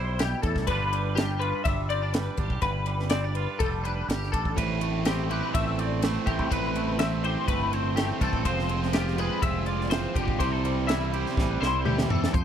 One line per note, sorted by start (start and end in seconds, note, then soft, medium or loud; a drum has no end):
0.00 0.33 B1 medium
0.00 0.70 G3 medium
0.00 0.66 E4 medium
0.00 0.71 G4 medium
0.00 0.71 B4 medium
0.00 0.19 C5 medium
0.19 0.44 B2 medium
0.19 0.42 G4 medium
0.19 snare loud
0.19 ride medium
0.42 0.54 E2 medium
0.42 0.69 A2 medium
0.42 0.67 A4 medium
0.42 kick medium
0.42 ride medium
0.56 0.66 C2 medium
0.56 kick medium
0.56 snare soft
0.67 1.52 G1 loud
0.67 2.61 G2 medium
0.67 0.93 G3 medium
0.67 1.18 D4 medium
0.67 1.16 B4 medium
0.67 kick medium
0.67 ride medium
0.72 1.42 F4 medium
0.72 2.62 B4 medium
0.93 1.65 G3 medium
0.93 ride medium
1.15 1.90 D4 medium
1.15 1.40 G4 medium
1.15 snare loud
1.15 ride medium
1.39 2.60 F4 medium
1.39 1.64 B4 medium
1.39 ride medium
1.64 2.28 G1 medium
1.64 2.15 G3 medium
1.64 1.89 E5 medium
1.64 kick medium
1.64 ride medium
1.89 2.02 C4 medium
1.89 2.13 D5 medium
1.89 ride medium
2.02 2.38 D4 medium
2.13 2.87 G3 medium
2.13 2.37 B4 medium
2.13 snare loud
2.13 ride medium
2.37 2.50 G1 medium
2.37 2.60 D4 medium
2.37 2.61 G4 medium
2.37 kick medium
2.37 ride medium
2.50 2.61 B1 medium
2.50 kick medium
2.62 3.46 G1 loud
2.62 4.57 G2 medium
2.62 3.10 B4 medium
2.62 4.58 B4 medium
2.62 kick medium
2.62 ride medium
2.86 3.60 G3 medium
2.86 ride medium
2.99 snare soft
3.10 3.24 C4 medium
3.10 3.34 D5 medium
3.10 snare loud
3.10 ride medium
3.24 3.84 D4 soft
3.34 4.55 F4 medium
3.34 3.59 B4 medium
3.34 ride medium
3.59 4.02 F1 medium
3.59 4.08 G3 medium
3.59 3.84 A4 medium
3.59 kick medium
3.59 ride medium
3.84 4.33 D4 medium
3.84 4.08 B4 medium
3.84 ride medium
4.08 4.30 G1 medium
4.08 4.81 G3 medium
4.08 4.32 G4 medium
4.08 snare loud
4.08 ride medium
4.23 snare soft
4.32 4.55 A1 medium
4.32 4.55 D4 medium
4.32 4.57 A4 medium
4.32 kick medium
4.32 ride medium
4.45 kick medium
4.56 5.41 A1 medium
4.56 6.03 A2 medium
4.56 6.49 A2 medium
4.56 5.06 E3 medium
4.56 4.82 A3 medium
4.56 4.81 C4 medium
4.56 4.80 E4 medium
4.56 6.49 B4 medium
4.56 kick medium
4.56 ride medium
4.80 5.55 A3 medium
4.80 5.06 A3 medium
4.80 5.07 C4 medium
4.80 5.07 E4 medium
4.80 ride medium
5.05 6.04 E3 medium
5.05 5.32 A3 medium
5.05 5.31 C4 medium
5.05 5.80 C4 medium
5.05 5.30 E4 medium
5.05 5.30 G4 medium
5.05 snare loud
5.05 ride medium
5.30 6.03 A3 medium
5.30 6.05 C4 medium
5.30 6.04 E4 medium
5.30 6.55 G4 medium
5.30 5.54 B4 medium
5.30 ride medium
5.54 6.17 A1 medium
5.54 6.03 A3 medium
5.54 5.78 E5 medium
5.54 kick medium
5.54 ride medium
5.78 6.29 C4 medium
5.78 6.02 D5 medium
5.78 ride medium
6.02 6.49 A2 loud
6.02 6.49 E3 medium
6.02 6.49 A3 medium
6.02 6.26 A3 loud
6.02 6.27 C4 medium
6.02 6.25 E4 loud
6.02 6.27 C5 medium
6.02 snare loud
6.02 ride medium
6.26 6.39 A1 medium
6.26 6.50 A3 medium
6.26 6.51 C4 medium
6.26 7.01 C4 medium
6.26 6.50 E4 medium
6.26 6.51 G4 medium
6.26 kick medium
6.26 ride medium
6.39 6.49 C2 medium
6.39 kick medium
6.50 7.35 A1 loud
6.50 6.99 A2 medium
6.50 8.43 A2 medium
6.50 6.97 E3 medium
6.50 6.75 A3 medium
6.50 6.75 C4 medium
6.50 6.73 E4 loud
6.50 7.00 B4 medium
6.50 8.44 B4 medium
6.50 kick medium
6.50 ride medium
6.74 6.98 A3 medium
6.74 7.48 A3 medium
6.74 6.99 C4 medium
6.74 6.99 E4 medium
6.74 ride medium
6.98 7.48 E3 medium
6.98 7.25 A3 medium
6.98 7.25 C4 medium
6.98 7.74 C4 medium
6.98 7.22 E4 medium
6.98 7.23 E5 medium
6.98 snare loud
6.98 ride medium
7.23 7.95 A3 medium
7.23 7.97 C4 medium
7.23 7.97 E4 medium
7.23 8.49 G4 medium
7.23 7.47 C5 medium
7.23 ride medium
7.48 8.11 G1 medium
7.48 7.97 A3 medium
7.48 7.73 B4 medium
7.48 kick medium
7.48 ride medium
7.73 8.22 C4 medium
7.73 7.97 C5 medium
7.73 ride medium
7.96 8.43 A2 loud
7.96 8.44 E3 loud
7.96 8.20 A3 medium
7.96 8.43 A3 medium
7.96 8.20 C4 loud
7.96 8.19 E4 medium
7.96 8.21 G4 medium
7.96 snare loud
7.96 ride medium
8.20 8.32 C2 medium
8.20 8.44 A3 medium
8.20 8.44 C4 medium
8.20 8.71 C4 medium
8.20 8.44 E4 medium
8.20 8.46 A4 medium
8.20 kick medium
8.20 ride medium
8.33 8.44 A1 medium
8.33 kick medium
8.44 9.29 F1 loud
8.44 8.90 F3 medium
8.44 9.90 F3 medium
8.44 8.69 G#3 medium
8.44 8.69 C4 medium
8.44 8.67 F4 medium
8.44 8.94 C5 medium
8.44 10.39 C5 medium
8.44 kick medium
8.44 ride medium
8.59 snare soft
8.69 8.91 G#3 medium
8.69 8.93 C4 medium
8.69 9.43 C4 medium
8.69 8.92 F4 medium
8.69 ride medium
8.83 snare soft
8.92 9.42 F3 medium
8.92 9.18 G#3 medium
8.92 9.17 C4 medium
8.92 9.15 F4 medium
8.92 9.18 G4 medium
8.92 snare loud
8.92 ride medium
8.96 9.67 F4 medium
9.08 snare soft
9.17 9.90 G#3 medium
9.17 9.92 C4 medium
9.17 9.91 F4 medium
9.17 10.38 G#4 medium
9.17 9.43 B4 medium
9.17 ride medium
9.42 10.06 F1 medium
9.42 10.64 C4 medium
9.42 9.66 E5 medium
9.42 kick medium
9.42 ride medium
9.66 10.38 F4 medium
9.66 9.90 D5 medium
9.66 ride medium
9.81 snare soft
9.90 10.15 E3 medium
9.90 10.38 F3 medium
9.90 10.16 G#3 medium
9.90 10.17 C4 loud
9.90 10.14 F4 loud
9.90 10.15 C5 medium
9.90 snare loud
9.90 ride medium
10.15 10.28 F1 medium
10.15 10.39 D3 medium
10.15 10.39 G#3 medium
10.15 10.41 C4 medium
10.15 10.38 F4 medium
10.15 10.40 G4 medium
10.15 kick medium
10.15 ride medium
10.28 10.39 G#1 medium
10.28 kick medium
10.39 11.24 C2 loud
10.39 11.84 C3 medium
10.39 10.89 C3 medium
10.39 10.87 E3 medium
10.39 10.66 G3 medium
10.39 10.65 C4 medium
10.39 10.63 E4 loud
10.39 10.52 G4 medium
10.39 10.87 C5 medium
10.39 kick medium
10.39 ride medium
10.52 12.34 A4 medium
10.65 11.36 G3 medium
10.65 10.88 G3 soft
10.65 10.89 C4 medium
10.65 10.89 E4 medium
10.65 ride medium
10.87 11.37 E3 medium
10.87 11.15 G3 medium
10.87 11.13 C4 medium
10.87 11.60 E4 medium
10.87 11.12 E4 medium
10.87 11.11 E5 medium
10.87 snare loud
10.87 ride medium
11.11 11.85 C4 medium
11.11 11.85 E4 medium
11.11 12.32 G4 medium
11.11 11.36 C5 medium
11.11 ride medium
11.16 11.84 G3 medium
11.26 snare soft
11.36 11.58 A1 medium
11.36 12.35 G3 medium
11.36 11.60 B4 medium
11.36 kick medium
11.36 snare medium
11.61 11.84 C2 medium
11.61 12.32 E4 medium
11.61 11.85 C5 medium
11.61 snare medium
11.85 12.08 D2 medium
11.85 12.32 C3 medium
11.85 12.08 D3 medium
11.85 12.33 E3 medium
11.85 12.10 G3 medium
11.85 12.09 C4 medium
11.85 12.08 E4 loud
11.85 12.09 G4 medium
11.85 mid tom medium
11.98 snare medium
12.09 12.32 E2 medium
12.09 12.34 E3 medium
12.09 12.33 G3 medium
12.09 12.33 C4 medium
12.09 12.33 E4 medium
12.09 12.33 A4 medium
12.09 floor tom loud
12.24 snare medium
12.33 12.44 F2 loud
12.33 12.44 F3 medium
12.33 12.44 C5 medium
12.33 kick loud
12.33 closed hi-hat medium